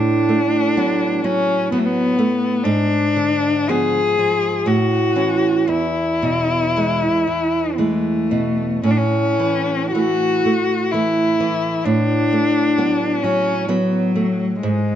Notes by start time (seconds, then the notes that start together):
Already playing: A2 D4
0.29 A3
0.77 F#3 B3
1.24 F#3 C#4
1.72 F#3 B3
1.78 A3
1.84 B3
2.19 A3
2.64 G#2 D4
3.16 D3
3.69 F3 B3 G#4
4.19 F3
4.66 A2 F#4
5.16 E3 C#4
5.68 E2 E4
6.22 B2
6.76 E3 G#3
7.27 E3
7.78 E3 G#3 A3
8.31 B2
8.83 A2 C#4
8.91 D4
8.97 C#4
9.40 E3
9.93 E3 A3 F#4
10.46 A3
10.91 E3 A3 E4
11.40 E3
11.84 A2 D4
12.33 A3
12.78 F#3 B3
13.23 F#3 C#4
13.68 F#3 B3
14.16 A3
14.62 G#2 G#3